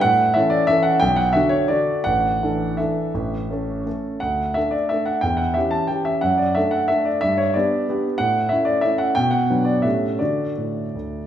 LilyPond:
\new Staff \with { instrumentName = "Grand piano" } { \time 3/4 \key d \major \tempo 4 = 177 << { fis''4 e''8 d''8 e''8 fis''8 | g''8 fis''8 e''8 cis''8 d''4 | fis''2 e''4~ | e''2 r4 |
fis''4 e''8 d''8 e''8 fis''8 | g''8 fis''8 e''8 a''8 g''8 e''8 | fis''8 d''8 e''8 fis''8 e''8 d''8 | e''8 cis''8 d''4. r8 |
fis''4 e''8 d''8 e''8 fis''8 | g''8 fis''4 d''8 e''4 | d''2. | } \\ { a,4 <e cis' a'>4 <e cis' a'>4 | b,,4 <d d' fis'>4 <d d' fis'>4 | a,,4 <e d' a'>4 <e d' a'>4 | a,,4 <a cis' a'>4 <a cis' a'>4 |
d,4 <a d' a'>4 <a d' a'>4 | e,4 <e cis' g'>4 <e cis' g'>4 | fis,4 <a d' a'>4 <a d' a'>4 | g,4 <b d' g'>4 <b d' g'>4 |
a,4 <a cis' e'>4 <a cis' e'>4 | b,4 <fis b d'>4 <a, a cis' g'>4 | <d d' fis'>4 a,4 d,4 | } >> }